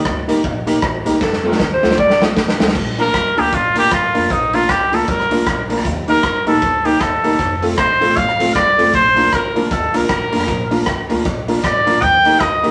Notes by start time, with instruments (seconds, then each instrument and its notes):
Already playing: alto saxophone D#5
0.05 upright bass D2, kick, cross-stick
0.28 upright bass C2, honky-tonk piano A#3 D#4 G4 A#4, clean electric guitar D#4 G4 A#4, closed hi-hat
0.44 upright bass A#1, kick
0.67 honky-tonk piano A#3 D#4 G4 A#4, clean electric guitar D#4 G4 A#4, closed hi-hat
0.82 upright bass A1, kick, cross-stick
1.05 upright bass C2, honky-tonk piano A#3 D#4 G4 A#4, clean electric guitar D#4 G4 A#4, closed hi-hat
1.21 upright bass F2, alto saxophone A4, kick, snare
1.33 snare
1.44 honky-tonk piano A3 C4 F4 A4, clean electric guitar C4 F4 A4
1.48 alto saxophone A#4, snare
1.60 upright bass D#2, kick, snare
1.74 alto saxophone C5
1.82 upright bass D2, honky-tonk piano A3 C4 F4 A4, clean electric guitar C4 F4 A4, snare
1.91 snare
1.98 upright bass C2, alto saxophone D5, muted clean electric guitar stroke, kick
2.10 snare
2.20 honky-tonk piano A3 C4 F4 A4, clean electric guitar C4 F4 A4, snare
2.25 alto saxophone D#5
2.36 upright bass D#2, muted clean electric guitar stroke, kick, snare
2.48 snare
2.58 upright bass D2, honky-tonk piano A3 C4 F4 A4, clean electric guitar C4 F4 A4, snare
2.68 snare
2.75 upright bass A#1, kick, crash
2.98 honky-tonk piano A#3 D4 F4 A#4, clean electric guitar D4 F4 A#4, trumpet A#4, open hi-hat
3.14 upright bass C2, kick, cross-stick, hi-hat pedal
3.36 upright bass D2, honky-tonk piano A#3 D4 F4 A#4, clean electric guitar D4 F4 A#4, trumpet G4, open hi-hat
3.52 upright bass A#1, trumpet F4, kick, hi-hat pedal
3.75 honky-tonk piano A#3 D4 F4 A#4, clean electric guitar D4 F4 A#4, trumpet G4, open hi-hat
3.91 upright bass A1, trumpet F4, kick, cross-stick, hi-hat pedal
4.14 upright bass F1, honky-tonk piano A#3 D4 F4 A#4, clean electric guitar D4 F4 A#4, open hi-hat
4.30 upright bass A#1, trumpet D#4, kick, hi-hat pedal
4.53 honky-tonk piano A#3 D4 F4 A#4, clean electric guitar D4 F4 A#4, trumpet F4, open hi-hat
4.69 upright bass C2, trumpet G4, kick, cross-stick, hi-hat pedal
4.92 upright bass D2, honky-tonk piano A#3 D4 F4 A#4, clean electric guitar D4 F4 A#4, trumpet A4, open hi-hat
5.07 upright bass C2, trumpet A#4, muted clean electric guitar stroke, kick, hi-hat pedal
5.20 cross-stick
5.31 honky-tonk piano A#3 D4 F4 A#4, clean electric guitar D4 F4 A#4, open hi-hat
5.46 upright bass A#1, muted clean electric guitar stroke, kick, cross-stick, hi-hat pedal
5.69 honky-tonk piano A#3 D4 F4 A#4, clean electric guitar D4 F4 A#4, open hi-hat
5.78 cross-stick
5.85 upright bass D#2, kick, hi-hat pedal
6.07 honky-tonk piano A#3 D#4 G4 A#4, clean electric guitar D#4 G4 A#4, trumpet A#4, open hi-hat
6.23 upright bass C2, kick, cross-stick, hi-hat pedal
6.46 upright bass A#1, honky-tonk piano A#3 D#4 G4 A#4, clean electric guitar D#4 G4 A#4, trumpet A4, open hi-hat
6.62 upright bass D2, kick, hi-hat pedal
6.85 honky-tonk piano A#3 D#4 G4 A#4, clean electric guitar D#4 G4 A#4, trumpet G4, open hi-hat
7.01 upright bass D#2, trumpet A4, kick, cross-stick, hi-hat pedal
7.23 honky-tonk piano A#3 D#4 G4 A#4, clean electric guitar D#4 G4 A#4, open hi-hat
7.39 upright bass F1, kick, hi-hat pedal
7.62 honky-tonk piano A3 C4 F4 A4, clean electric guitar C4 F4 A4, open hi-hat
7.78 upright bass A1, trumpet C5, kick, cross-stick, hi-hat pedal
8.00 upright bass A#1, honky-tonk piano A3 C4 F4 A4, clean electric guitar C4 F4 A4, open hi-hat
8.17 upright bass A1, trumpet F5, muted clean electric guitar stroke, kick, hi-hat pedal
8.29 cross-stick
8.39 honky-tonk piano A3 C4 F4 A4, clean electric guitar C4 F4 A4, open hi-hat
8.55 upright bass C2, trumpet D5, kick, cross-stick, hi-hat pedal
8.78 upright bass F1, honky-tonk piano A3 C4 F4 A4, clean electric guitar C4 F4 A4, open hi-hat
8.94 upright bass A#1, trumpet C5, kick, hi-hat pedal
9.16 honky-tonk piano A#3 D4 F4 A#4, clean electric guitar D4 F4 A#4, open hi-hat
9.33 upright bass C2, trumpet A#4, kick, cross-stick, hi-hat pedal
9.55 upright bass D2, honky-tonk piano A#3 D4 F4 A#4, clean electric guitar D4 F4 A#4, open hi-hat
9.71 upright bass D#2, trumpet A4, kick, hi-hat pedal
9.94 upright bass C2, honky-tonk piano A#3 D4 F4 A#4, clean electric guitar D4 F4 A#4, trumpet A#4, open hi-hat
10.09 upright bass A#1, kick, cross-stick, hi-hat pedal
10.32 upright bass F1, honky-tonk piano A#3 D4 F4 A#4, clean electric guitar D4 F4 A#4, open hi-hat
10.41 cross-stick
10.48 upright bass A#1, kick, hi-hat pedal
10.71 honky-tonk piano A#3 D4 F4 A#4, clean electric guitar D4 F4 A#4, open hi-hat
10.86 upright bass C2, kick, cross-stick, hi-hat pedal
11.09 upright bass D2, honky-tonk piano A#3 D4 F4 A#4, clean electric guitar D4 F4 A#4, open hi-hat
11.25 upright bass A#1, muted clean electric guitar stroke, kick, hi-hat pedal
11.48 honky-tonk piano A#3 D4 F4 A#4, clean electric guitar D4 F4 A#4, open hi-hat
11.63 upright bass A1, trumpet D5, muted clean electric guitar stroke, kick, cross-stick, hi-hat pedal
11.86 upright bass A#1, honky-tonk piano A#3 D4 F4 A#4, clean electric guitar D4 F4 A#4, open hi-hat
12.02 upright bass D#2, trumpet G5, kick, hi-hat pedal
12.24 honky-tonk piano A#3 D#4 G4 A#4, clean electric guitar D#4 G4 A#4, open hi-hat
12.40 upright bass D2, trumpet D#5, kick, cross-stick, hi-hat pedal
12.63 upright bass C2, honky-tonk piano A#3 D#4 G4 A#4, clean electric guitar D#4 G4 A#4, open hi-hat